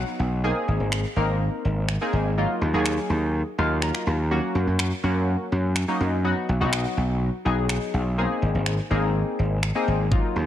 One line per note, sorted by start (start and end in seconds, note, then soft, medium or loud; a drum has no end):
0.00 0.30 F#3 medium
0.00 0.30 B3 medium
0.00 0.30 D#4 medium
0.00 0.30 F#4 loud
0.00 0.40 F#5 medium
0.00 downlifter medium
0.19 0.51 B1 loud
0.44 1.02 A#3 medium
0.44 1.02 C4 medium
0.44 1.02 D#4 medium
0.44 1.02 G#4 loud
0.68 0.76 G#1 medium
0.80 1.04 G#1 medium
0.92 finger snap loud
1.16 1.48 G#1 loud
1.16 1.85 A#3 medium
1.16 1.85 C4 medium
1.16 1.85 D#4 medium
1.16 1.85 A#4 loud
1.65 1.96 G#1 medium
1.89 finger snap loud
2.01 2.30 A#3 medium
2.01 2.30 C4 medium
2.01 2.31 D#4 medium
2.01 2.31 G#4 medium
2.13 2.45 G#1 loud
2.37 2.67 F#3 medium
2.37 2.67 A#3 medium
2.37 2.67 D#4 medium
2.37 2.67 F4 medium
2.61 2.69 D#2 medium
2.73 2.97 D#2 medium
2.73 3.42 F#3 medium
2.73 3.42 A#3 medium
2.73 3.42 D#4 medium
2.73 3.42 G#4 loud
2.86 finger snap loud
3.10 3.41 D#2 loud
3.58 3.90 D#2 medium
3.58 4.17 F#3 medium
3.58 4.17 A#3 medium
3.58 4.17 D#4 medium
3.58 4.17 F4 medium
3.58 3.81 F5 medium
3.82 4.28 A#5 medium
3.82 finger snap loud
3.95 finger snap medium
4.07 4.38 D#2 loud
4.31 4.89 F#3 medium
4.31 4.89 A#3 medium
4.31 4.89 C#4 medium
4.31 4.90 F#4 medium
4.55 4.63 F#2 medium
4.67 4.91 F#2 medium
4.79 finger snap loud
5.03 5.35 F#2 loud
5.03 5.72 F#3 medium
5.03 5.72 A#3 medium
5.03 5.72 C#4 medium
5.03 5.72 F#4 medium
5.52 5.84 F#2 medium
5.76 finger snap medium
5.88 6.17 F#3 medium
5.88 6.17 A#3 medium
5.88 6.17 C#4 medium
5.88 6.18 D#4 loud
6.00 6.32 F#2 loud
6.24 6.54 F#3 medium
6.24 6.54 B3 medium
6.24 6.54 D#4 medium
6.24 6.54 F#4 loud
6.49 6.57 B1 medium
6.61 6.85 B1 medium
6.61 7.29 F#3 medium
6.61 7.29 B3 medium
6.61 7.29 D#4 medium
6.61 7.29 F#4 loud
6.73 finger snap loud
6.97 7.29 B1 loud
7.45 7.77 B1 medium
7.45 8.04 F#3 medium
7.45 8.04 B3 medium
7.45 8.04 D#4 medium
7.45 8.04 G#4 loud
7.69 finger snap loud
7.94 8.25 B1 loud
8.18 8.76 A#3 medium
8.18 8.77 C4 medium
8.18 8.77 D#4 medium
8.18 8.77 G#4 loud
8.42 8.50 G#1 medium
8.55 8.78 G#1 medium
8.66 finger snap loud
8.90 9.22 G#1 loud
8.90 9.59 A#3 medium
8.90 9.59 C4 medium
8.90 9.59 D#4 medium
8.90 9.59 G#4 medium
9.39 9.71 G#1 medium
9.63 finger snap medium
9.75 10.04 A#3 medium
9.75 10.05 C4 medium
9.75 10.05 D#4 medium
9.75 10.05 G#4 medium
9.88 10.19 G#1 loud
10.12 10.41 F#3 medium
10.12 10.41 A#3 medium
10.12 10.41 D#4 medium
10.12 10.41 F4 loud
10.12 kick loud
10.36 10.44 D#2 medium